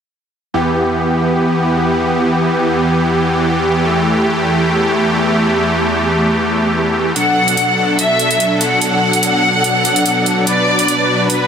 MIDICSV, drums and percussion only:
0, 0, Header, 1, 2, 480
1, 0, Start_track
1, 0, Key_signature, 1, "minor"
1, 0, Tempo, 413793
1, 625, Time_signature, 4, 2, 24, 8
1, 13308, End_track
2, 0, Start_track
2, 0, Title_t, "Drums"
2, 8305, Note_on_c, 9, 42, 70
2, 8421, Note_off_c, 9, 42, 0
2, 8675, Note_on_c, 9, 42, 48
2, 8785, Note_off_c, 9, 42, 0
2, 8785, Note_on_c, 9, 42, 67
2, 8901, Note_off_c, 9, 42, 0
2, 9266, Note_on_c, 9, 42, 70
2, 9382, Note_off_c, 9, 42, 0
2, 9506, Note_on_c, 9, 42, 48
2, 9622, Note_off_c, 9, 42, 0
2, 9635, Note_on_c, 9, 42, 46
2, 9746, Note_off_c, 9, 42, 0
2, 9746, Note_on_c, 9, 42, 70
2, 9862, Note_off_c, 9, 42, 0
2, 9985, Note_on_c, 9, 42, 47
2, 10101, Note_off_c, 9, 42, 0
2, 10225, Note_on_c, 9, 42, 68
2, 10341, Note_off_c, 9, 42, 0
2, 10595, Note_on_c, 9, 42, 50
2, 10705, Note_off_c, 9, 42, 0
2, 10705, Note_on_c, 9, 42, 69
2, 10821, Note_off_c, 9, 42, 0
2, 11185, Note_on_c, 9, 42, 69
2, 11301, Note_off_c, 9, 42, 0
2, 11425, Note_on_c, 9, 42, 47
2, 11541, Note_off_c, 9, 42, 0
2, 11555, Note_on_c, 9, 42, 46
2, 11665, Note_off_c, 9, 42, 0
2, 11665, Note_on_c, 9, 42, 74
2, 11781, Note_off_c, 9, 42, 0
2, 11905, Note_on_c, 9, 42, 46
2, 12021, Note_off_c, 9, 42, 0
2, 12145, Note_on_c, 9, 42, 70
2, 12261, Note_off_c, 9, 42, 0
2, 12515, Note_on_c, 9, 42, 51
2, 12625, Note_off_c, 9, 42, 0
2, 12625, Note_on_c, 9, 42, 71
2, 12741, Note_off_c, 9, 42, 0
2, 13105, Note_on_c, 9, 42, 71
2, 13221, Note_off_c, 9, 42, 0
2, 13308, End_track
0, 0, End_of_file